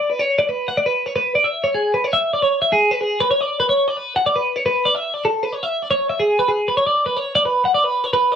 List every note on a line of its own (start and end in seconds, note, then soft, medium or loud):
0.10 0.19 B4 medium
0.19 0.38 C#5 medium
0.39 0.48 D5 medium
0.49 0.68 B4 soft
0.68 0.78 F#5 medium
0.77 0.86 D5 medium
0.86 1.06 B4 medium
1.06 1.15 C#5 medium
1.16 1.35 B4 medium
1.35 1.45 D5 medium
1.44 1.64 E5 medium
1.64 1.74 C#5 medium
1.75 1.94 G#4 medium
1.94 2.04 B4 medium
2.04 2.14 C#5 medium
2.13 2.33 E5 medium
2.33 2.42 D5 medium
2.42 2.61 C#5 medium
2.62 2.72 E5 medium
2.72 2.91 G#4 medium
2.91 3.01 B4 medium
3.01 3.20 G#4 medium
3.20 3.30 B4 medium
3.31 3.41 C#5 medium
3.41 3.59 D5 medium
3.60 3.69 B4 medium
3.69 3.88 C#5 medium
3.88 3.97 D5 medium
3.97 4.16 B4 medium
4.16 4.26 F#5 medium
4.26 4.36 D5 medium
4.36 4.56 B4 medium
4.56 4.65 C#5 medium
4.66 4.85 B4 medium
4.85 4.95 D5 medium
4.95 5.14 E5 medium
5.14 5.24 D5 medium
5.25 5.43 A4 medium
5.43 5.53 B4 medium
5.53 5.63 C#5 medium
5.63 5.82 E5 medium
5.82 5.90 D5 medium
5.91 6.09 C#5 medium
6.09 6.20 E5 medium
6.20 6.39 G#4 medium
6.39 6.49 B4 medium
6.48 6.68 G#4 medium
6.68 6.77 B4 medium
6.77 6.86 C#5 medium
6.86 7.06 D5 medium
7.06 7.17 B4 medium
7.17 7.35 C#5 medium
7.35 7.45 D5 medium
7.45 7.65 B4 medium
7.65 7.74 F#5 medium
7.74 7.84 D5 medium
7.84 8.04 B4 medium
8.04 8.13 C#5 medium
8.13 8.32 B4 medium
8.32 8.36 D5 medium